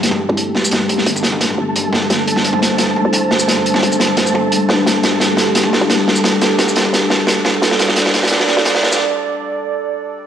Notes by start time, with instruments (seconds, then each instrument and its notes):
Already playing: 808-style bass G1, analog synth pad G3 D4 G4 A4, synth texture A3 A5
0.03 snare, closed hi-hat
0.11 mid tom
0.29 808-style bass C2, mid tom
0.37 closed hi-hat
0.55 808-style bass D2, snare, mid tom
0.65 shaker
0.71 snare, closed hi-hat, mid tom
0.89 closed hi-hat, mid tom
0.98 snare
1.06 808-style bass G1, closed hi-hat
1.16 mid tom, shaker
1.23 snare, closed hi-hat
1.32 mid tom
1.41 808-style bass D1, snare, closed hi-hat
1.50 mid tom
1.58 808-style bass G1
1.76 closed hi-hat, mid tom
1.93 snare, mid tom
2.10 808-style bass G1, analog synth pad C5, snare, closed hi-hat, mid tom
2.27 closed hi-hat
2.36 snare, mid tom
2.44 closed hi-hat
2.53 mid tom
2.62 snare, closed hi-hat
2.71 mid tom
2.78 snare, closed hi-hat
2.96 mid tom
3.05 808-style bass C2
3.13 closed hi-hat, mid tom
3.31 808-style bass D2, snare, mid tom
3.39 shaker
3.48 snare, closed hi-hat
3.56 mid tom
3.66 closed hi-hat
3.74 snare, mid tom
3.83 808-style bass G1, closed hi-hat
3.92 mid tom, shaker
4.00 snare, closed hi-hat
4.17 808-style bass D1, snare, closed hi-hat, mid tom
4.26 shaker
4.34 808-style bass G1, mid tom
4.52 closed hi-hat, mid tom
4.69 808-style bass G2, snare
4.78 mid tom
4.86 808-style bass G1, analog synth pad G4, snare, closed hi-hat, mid tom
5.03 snare, closed hi-hat, mid tom
5.20 snare, closed hi-hat, mid tom
5.37 snare, closed hi-hat
5.46 mid tom
5.55 snare, closed hi-hat
5.63 mid tom
5.73 snare
5.81 808-style bass C2, mid tom
5.90 snare, closed hi-hat
6.07 808-style bass D2, snare, mid tom
6.16 shaker
6.24 snare, closed hi-hat, mid tom
6.41 snare, closed hi-hat, mid tom
6.59 808-style bass G1, snare, closed hi-hat
6.68 mid tom, shaker
6.76 snare, closed hi-hat
6.85 mid tom
6.93 808-style bass D1, snare, closed hi-hat
7.02 mid tom
7.10 808-style bass G1, snare
7.27 snare, closed hi-hat, mid tom
7.45 snare, mid tom
7.62 808-style bass G1, analog synth pad D5, snare, closed hi-hat, mid tom
7.71 snare
7.79 snare, closed hi-hat
7.89 snare, mid tom
7.96 snare, closed hi-hat
8.06 snare, mid tom
8.14 snare, closed hi-hat
8.23 snare, mid tom
8.27 closed hi-hat
8.32 snare
8.40 snare
8.48 snare, mid tom
8.57 808-style bass C2, snare
8.65 snare, closed hi-hat, mid tom
8.75 snare
8.83 808-style bass D2, snare, mid tom
8.92 snare, shaker
8.94 snare
8.97 snare
8.99 snare